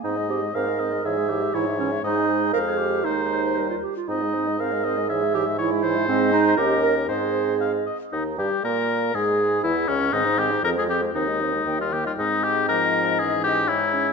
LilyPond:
<<
  \new Staff \with { instrumentName = "Flute" } { \time 2/4 \key aes \major \tempo 4 = 119 c''16 ees''16 c''16 ees''16 c''16 ees''16 c''16 ees''16 | des''16 fes''16 des''16 fes''16 des''16 fes''16 des''16 fes''16 | c''4 c''4 | c''4 bes'8 r8 |
c''16 ees''16 c''16 ees''16 c''16 ees''16 c''16 ees''16 | des''16 fes''16 des''16 fes''16 des''16 fes''16 des''16 fes''16 | ees''4 ees''4 | ees''4. r8 |
ees'8 g'8 bes'4 | aes'4 fes'8 des'8 | ees''16 c''16 ees''16 c''16 aes'16 c''16 aes'16 c''16 | c''16 ees''16 c''16 ees''16 g''16 ees''16 g''16 ees''16 |
ees''2~ | ees''4 des''4 | }
  \new Staff \with { instrumentName = "Oboe" } { \time 2/4 \key aes \major ees''4 f''8 ees''8 | fes''4 des''4 | ees''4 f''4 | c''4. r8 |
ees''4 f''8 ees''8 | fes''4 des''8 c''8~ | c''4 bes'4 | c''4 f''8 ees''8 |
ees'8 g'8 bes'4 | aes'4 fes'8 des'8 | ees'8 g'8 bes'16 aes'16 g'8 | ees'4~ ees'16 f'16 g'16 f'16 |
ees'8 g'8 bes'4 | aes'8 g'8 fes'4 | }
  \new Staff \with { instrumentName = "Clarinet" } { \time 2/4 \key aes \major ees'8 g'8 bes'4 | aes'8 g'8 fes'8 des'8 | ees'4 bes'16 aes'16 g'8 | ees'4~ ees'16 f'16 g'16 f'16 |
ees'4 bes'4 | aes'8 g'8 fes'4 | c'8 ees'8 g'8 bes'8 | aes'4. r8 |
ees'8 g'8 bes'4 | aes'4 fes'8 des'8 | c'16 ees'16 c'16 ees'16 c'16 f'16 c'16 f'16 | c'16 ees'16 c'16 ees'16 bes16 ees'16 bes16 ees'16 |
c'2 | des'4 ees'8 des'8 | }
  \new Staff \with { instrumentName = "French horn" } { \clef bass \time 2/4 \key aes \major c'16 aes16 c'16 aes16 c'16 aes16 c'16 aes16 | fes16 aes16 fes16 aes16 fes16 aes16 fes16 aes16 | aes4 aes4 | aes4 g8 r8 |
c'16 aes16 c'16 aes16 c'16 aes16 c'16 aes16 | fes16 aes16 fes16 aes16 fes16 aes16 fes16 aes16 | aes4 des'4 | c'4. r8 |
ees8 g8 bes4 | aes4 fes8 des8 | ees16 aes16 ees16 aes16 f16 aes16 f16 aes16 | ees16 aes16 ees16 aes16 ees16 g16 ees16 g16 |
aes4 f4 | fes4 aes4 | }
  \new Staff \with { instrumentName = "Bassoon" } { \clef bass \time 2/4 \key aes \major aes,4 aes,4 | aes,4 aes,4 | aes,4 f,4 | ees,4. r8 |
aes,2~ | aes,2 | aes,4 ees,4 | aes,4. r8 |
ees,8 g,8 bes,4 | aes,4 fes,8 des,8 | aes,4 f,4 | ees,4 ees,4 |
aes,2~ | aes,2 | }
>>